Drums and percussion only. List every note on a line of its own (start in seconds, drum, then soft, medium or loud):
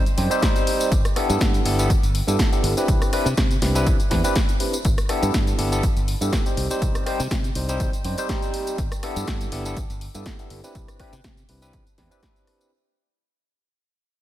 0.06 closed hi-hat soft
0.06 tambourine soft
0.18 open hi-hat loud
0.31 closed hi-hat soft
0.31 tambourine medium
0.42 kick loud
0.42 snare loud
0.42 closed hi-hat medium
0.42 tambourine medium
0.56 closed hi-hat soft
0.56 tambourine soft
0.67 open hi-hat loud
0.80 closed hi-hat soft
0.80 tambourine medium
0.92 kick loud
0.92 closed hi-hat medium
0.92 tambourine medium
1.05 cross-stick medium
1.05 closed hi-hat soft
1.05 tambourine soft
1.16 cross-stick medium
1.16 open hi-hat loud
1.30 closed hi-hat soft
1.30 tambourine medium
1.41 kick loud
1.41 snare loud
1.41 closed hi-hat medium
1.41 tambourine medium
1.54 closed hi-hat soft
1.54 tambourine soft
1.66 open hi-hat loud
1.79 closed hi-hat soft
1.79 tambourine medium
1.90 kick loud
1.90 closed hi-hat medium
1.90 tambourine medium
2.03 closed hi-hat soft
2.03 tambourine soft
2.15 open hi-hat loud
2.28 closed hi-hat soft
2.28 tambourine medium
2.39 kick loud
2.39 snare loud
2.39 closed hi-hat medium
2.39 tambourine medium
2.53 closed hi-hat soft
2.53 tambourine soft
2.64 open hi-hat loud
2.77 closed hi-hat soft
2.77 tambourine medium
2.88 kick loud
2.88 closed hi-hat medium
2.88 tambourine medium
3.02 cross-stick medium
3.02 closed hi-hat soft
3.02 tambourine soft
3.13 cross-stick medium
3.13 open hi-hat loud
3.26 closed hi-hat soft
3.26 tambourine medium
3.37 kick loud
3.37 snare loud
3.37 closed hi-hat medium
3.37 tambourine medium
3.51 closed hi-hat soft
3.51 tambourine soft
3.62 snare medium
3.62 open hi-hat loud
3.75 closed hi-hat soft
3.75 tambourine medium
3.87 kick loud
3.87 closed hi-hat medium
3.87 tambourine medium
4.00 closed hi-hat soft
4.00 tambourine soft
4.11 kick medium
4.11 snare medium
4.11 open hi-hat loud
4.24 closed hi-hat soft
4.24 tambourine medium
4.36 kick loud
4.36 snare loud
4.36 closed hi-hat medium
4.36 tambourine medium
4.49 closed hi-hat soft
4.49 tambourine soft
4.60 open hi-hat medium
4.73 closed hi-hat soft
4.73 tambourine medium
4.85 kick loud
4.85 closed hi-hat medium
4.85 tambourine medium
4.98 cross-stick medium
4.98 closed hi-hat soft
4.98 tambourine soft
5.09 cross-stick medium
5.09 open hi-hat loud
5.23 closed hi-hat soft
5.23 tambourine medium
5.34 kick loud
5.34 snare loud
5.34 closed hi-hat medium
5.34 tambourine medium
5.47 closed hi-hat soft
5.47 tambourine soft
5.59 open hi-hat loud
5.72 closed hi-hat soft
5.72 tambourine medium
5.83 kick loud
5.83 closed hi-hat medium
5.83 tambourine medium
5.97 closed hi-hat soft
5.97 tambourine soft
6.08 open hi-hat loud
6.21 closed hi-hat soft
6.21 tambourine medium
6.33 kick loud
6.33 snare loud
6.33 closed hi-hat medium
6.33 tambourine medium
6.46 closed hi-hat soft
6.46 tambourine soft
6.57 open hi-hat medium
6.71 closed hi-hat soft
6.71 tambourine medium
6.82 kick loud
6.82 closed hi-hat medium
6.82 tambourine medium
6.95 cross-stick medium
6.95 closed hi-hat soft
6.95 tambourine soft
7.06 cross-stick medium
7.06 open hi-hat loud
7.20 closed hi-hat soft
7.20 tambourine medium
7.31 kick loud
7.31 snare loud
7.31 closed hi-hat medium
7.31 tambourine medium
7.44 closed hi-hat soft
7.44 tambourine soft
7.55 open hi-hat loud
7.69 closed hi-hat soft
7.69 tambourine medium
7.80 kick loud
7.80 closed hi-hat medium
7.80 tambourine medium
7.93 closed hi-hat soft
7.93 tambourine soft
8.04 open hi-hat loud
8.18 closed hi-hat soft
8.18 tambourine medium
8.29 kick loud
8.29 snare loud
8.29 closed hi-hat medium
8.29 tambourine medium
8.42 closed hi-hat soft
8.42 tambourine soft
8.54 open hi-hat loud
8.67 closed hi-hat soft
8.67 tambourine medium
8.78 kick loud
8.78 closed hi-hat medium
8.78 tambourine medium
8.92 cross-stick medium
8.92 closed hi-hat soft
8.92 tambourine soft
9.03 cross-stick medium
9.03 open hi-hat loud
9.16 closed hi-hat soft
9.16 tambourine medium
9.28 kick loud
9.28 snare loud
9.28 closed hi-hat loud
9.28 tambourine medium
9.41 closed hi-hat soft
9.41 tambourine soft
9.52 open hi-hat medium
9.65 closed hi-hat soft
9.65 tambourine medium
9.77 kick loud
9.77 closed hi-hat loud
9.77 tambourine medium
9.90 closed hi-hat soft
9.90 tambourine soft
10.01 open hi-hat loud
10.15 closed hi-hat soft
10.15 tambourine medium
10.26 kick loud
10.26 snare loud
10.26 closed hi-hat loud
10.26 tambourine medium
10.39 closed hi-hat soft
10.39 tambourine soft
10.50 open hi-hat medium
10.64 closed hi-hat soft
10.64 tambourine medium
10.75 kick loud
10.75 closed hi-hat loud
10.75 tambourine medium
10.88 cross-stick medium
10.88 closed hi-hat soft
10.88 tambourine soft
11.00 kick medium
11.00 cross-stick medium
11.00 open hi-hat loud
11.13 closed hi-hat soft
11.13 tambourine medium
11.24 kick loud
11.24 snare loud
11.24 closed hi-hat loud
11.24 tambourine medium
11.37 closed hi-hat soft
11.37 tambourine soft
11.49 open hi-hat loud
11.62 closed hi-hat soft
11.62 tambourine medium
11.73 kick loud
11.73 closed hi-hat loud
11.73 tambourine medium
11.87 closed hi-hat soft
11.87 tambourine soft
11.98 kick medium
11.98 snare medium
11.98 open hi-hat loud
12.11 closed hi-hat soft
12.11 tambourine medium
12.23 kick loud
12.23 snare loud
12.23 closed hi-hat loud
12.23 tambourine medium
12.36 closed hi-hat soft
12.36 tambourine soft
12.47 cross-stick medium
12.47 open hi-hat medium
12.61 closed hi-hat soft
12.61 tambourine medium